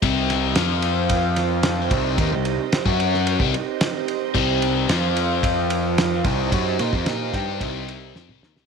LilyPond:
<<
  \new Staff \with { instrumentName = "String section" } { \time 4/4 \key f \mixolydian \tempo 4 = 111 << { <c' ees' g' ees''>4 <f f' f''>2~ <f f' f''>8 <ees' g' ees''>8~ | <ees' g' ees''>4~ <ees' g' ees''>16 <fis cis' fis' fis''>4 <c' ees' g' ees''>4.~ <c' ees' g' ees''>16~ | <c' ees' g' ees''>4 <f c' f' f''>2~ <f c' f' f''>8 <ees' g' ees''>8~ | <ees' g' ees''>1 | } \\ { c''1~ | c''4~ c''16 cis''4 c''4.~ c''16~ | c''2.~ c''8 c''8~ | c''1 | } >> }
  \new Staff \with { instrumentName = "Overdriven electric guitar" } { \clef bass \time 4/4 \key f \mixolydian <c g c'>4 <f c' f'>2~ <f c' f'>8 <c g c'>8 | <ees bes>16 <c g>8 r8 <fis cis' fis'>4 <c g>16 r4. | <c g c'>4 <f c' f'>2~ <f c' f'>8 <c g c'>8 | <fis des' fis'>8 <bes f'>16 <f c'>16 <bes f' bes'>8 <g d' g'>8 <c g c'>4 <f c'>16 <c g>16 <ees bes>16 <c g>16 | }
  \new Staff \with { instrumentName = "Picked electric bass" } { \clef bass \time 4/4 \key f \mixolydian c,4 f,2~ f,8 c,8 | ees,16 c,8 r8 fis,4 c,16 r4. | c,4 f,2~ f,8 c,8 | fis,8 bes,16 f,16 bes,8 g,8 c,4 f,16 c,16 ees,16 c,16 | }
  \new DrumStaff \with { instrumentName = "Drums" } \drummode { \time 4/4 <bd cymr>8 <cymr sn>8 <cymr sn>8 cymr8 <bd cymr>8 <cymr sn>8 <cymr sn>8 <bd cymr>8 | <bd cymr>8 cymr8 <cymr sn>16 <bd sn>16 cymr16 sn16 cymr16 bd16 cymr8 <cymr sn>8 cymr8 | <cymc bd>8 cymr8 <cymr sn>8 cymr8 <bd cymr>8 cymr8 <cymr sn>8 <bd cymr>8 | <bd cymr>8 <cymr sn>16 bd16 <cymr sn>8 <bd cymr sn>8 <bd cymr>8 cymr8 sn16 toml16 sn16 sn16 | }
>>